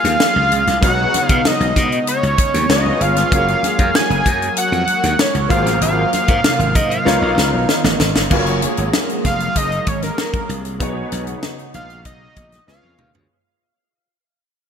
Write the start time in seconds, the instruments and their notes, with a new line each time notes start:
Already playing: analog synth pad F#3 G#3 A#3 G#4, grand piano A#3 F4 F#4 G#4 C#5, analog synth lead F5
0.04 slap bass D#2, snare, closed hi-hat, high conga
0.20 snare, muted conga
0.36 slap bass C#2, high conga
0.52 slap bass C#2, closed hi-hat, muted conga, low conga
0.67 slap bass C2, snare, closed hi-hat
0.81 slap bass B1, analog synth pad C#3 B3 D#4, grand piano B3 D#4 F#4 G#4 C#5, analog synth lead F#5, kick, closed hi-hat, muted conga, low conga
1.14 snare, closed hi-hat, muted conga, high conga
1.25 analog synth lead F5, closed hi-hat
1.29 slap bass B2, kick
1.45 analog synth lead D#5, snare, muted conga, high conga
1.60 slap bass B1, closed hi-hat
1.76 slap bass B2, kick, snare, closed hi-hat, muted conga, low conga
1.92 closed hi-hat
2.07 analog synth lead C#5, closed hi-hat
2.23 slap bass C#2, closed hi-hat
2.38 kick, closed hi-hat, high conga
2.54 slap bass D#2, snare, closed hi-hat, high conga
2.69 slap bass C#2, grand piano B3 C#4 D#4 G#4 C#5, analog synth pad F4, analog synth lead D#5, snare
2.77 grand piano F4
2.86 high conga
3.01 slap bass G1, analog synth lead F5, closed hi-hat, muted conga, low conga
3.16 snare, closed hi-hat
3.31 slap bass F#1, analog synth pad F#3 F#4 A#4, grand piano A#3 C#4 F#4 G#4 C#5, kick, closed hi-hat, low conga
3.48 closed hi-hat
3.63 snare, closed hi-hat, muted conga, high conga
3.79 slap bass F#2, kick, closed hi-hat
3.94 analog synth lead G#5, snare, muted conga, high conga
4.10 slap bass F#1, closed hi-hat
4.25 slap bass F#2, kick, closed hi-hat, muted conga, low conga
4.42 closed hi-hat
4.57 analog synth lead F#5, closed hi-hat
4.72 slap bass F2, closed hi-hat
4.87 closed hi-hat, high conga
5.03 slap bass D#2, snare, closed hi-hat, high conga
5.19 analog synth lead C#5, snare
5.35 slap bass C#2, closed hi-hat, high conga
5.49 slap bass G#1, analog synth pad C3 F#3 F5, grand piano A#3 F4 F#4 G#4 C5, analog synth lead F5, kick, closed hi-hat, low conga
5.66 slap bass A1, snare, closed hi-hat
5.81 slap bass G#1, analog synth lead F5, closed hi-hat, muted conga, low conga
6.13 snare, closed hi-hat, high conga
6.28 slap bass G#2, kick, closed hi-hat
6.44 snare, muted conga, high conga
6.59 slap bass G#1, closed hi-hat
6.75 slap bass G#2, analog synth lead D#5, kick, closed hi-hat, low conga
6.90 analog synth lead F5, closed hi-hat
7.05 slap bass C#2, analog synth pad D#3 B3, grand piano B3 D#4 F4 A#4 C#5, snare
7.22 slap bass B1
7.38 slap bass C#2, snare, muted conga, high conga
7.53 slap bass B1, high conga
7.69 snare, muted conga
7.84 slap bass A1, snare, high conga
8.00 slap bass G#1, snare, low conga
8.15 slap bass G1, snare
8.30 slap bass F#1, analog synth pad F#3 G#3 A#3 G#4, grand piano A#3 F4 F#4 G#4 B4, kick, crash, muted conga, low conga
8.39 grand piano C#5
8.46 closed hi-hat
8.62 closed hi-hat, high conga
8.77 slap bass G#1, closed hi-hat
8.93 snare, high conga
9.09 closed hi-hat
9.25 slap bass F1, analog synth lead F5, kick, snare, closed hi-hat, muted conga, low conga
9.40 closed hi-hat
9.56 slap bass F#1, analog synth lead D#5, kick, closed hi-hat
9.72 closed hi-hat
9.87 slap bass G#1, analog synth lead C#5, kick, closed hi-hat
10.02 analog synth lead A#4, snare, closed hi-hat, high conga
10.18 snare, muted conga
10.33 kick, closed hi-hat, high conga
10.49 slap bass C2, closed hi-hat, low conga
10.65 closed hi-hat
10.80 slap bass B1, analog synth pad C#3 B3 D#4, grand piano B3 D#4 F#4 G#4 C#5, kick, closed hi-hat, low conga
11.12 slap bass B1, snare, closed hi-hat, muted conga, high conga
11.27 closed hi-hat
11.43 snare, high conga
11.59 closed hi-hat
11.74 slap bass A#1, analog synth lead F5, closed hi-hat, low conga
11.90 closed hi-hat
12.05 slap bass B1, analog synth lead D#5, kick, closed hi-hat, muted conga
12.36 slap bass A#1, kick, closed hi-hat, muted conga
12.52 snare, closed hi-hat, high conga
12.67 slap bass C#2, grand piano B3 C#4 F4 G#4 B4, analog synth pad F4, analog synth lead F5, snare
12.75 grand piano C#5
12.83 slap bass F2, high conga
12.99 slap bass D#2, mid tom, low conga
13.15 slap bass D2, floor tom